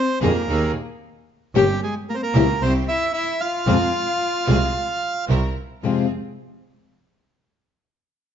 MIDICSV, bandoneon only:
0, 0, Header, 1, 2, 480
1, 0, Start_track
1, 0, Key_signature, -4, "minor"
1, 0, Tempo, 531915
1, 1394, Time_signature, 4, 2, 24, 8
1, 3789, Tempo, 539084
1, 7476, End_track
2, 0, Start_track
2, 0, Title_t, "Bandoneon"
2, 0, Program_c, 0, 23
2, 0, Note_on_c, 0, 72, 99
2, 169, Note_off_c, 0, 72, 0
2, 207, Note_on_c, 0, 70, 71
2, 650, Note_off_c, 0, 70, 0
2, 1417, Note_on_c, 0, 67, 97
2, 1629, Note_off_c, 0, 67, 0
2, 1652, Note_on_c, 0, 68, 74
2, 1756, Note_off_c, 0, 68, 0
2, 1891, Note_on_c, 0, 70, 73
2, 1936, Note_on_c, 0, 72, 69
2, 1945, Note_off_c, 0, 70, 0
2, 1997, Note_off_c, 0, 72, 0
2, 2011, Note_on_c, 0, 70, 98
2, 2363, Note_on_c, 0, 72, 95
2, 2367, Note_off_c, 0, 70, 0
2, 2467, Note_off_c, 0, 72, 0
2, 2603, Note_on_c, 0, 76, 103
2, 2816, Note_off_c, 0, 76, 0
2, 2829, Note_on_c, 0, 76, 97
2, 3074, Note_on_c, 0, 77, 103
2, 3075, Note_off_c, 0, 76, 0
2, 4726, Note_off_c, 0, 77, 0
2, 7476, End_track
0, 0, End_of_file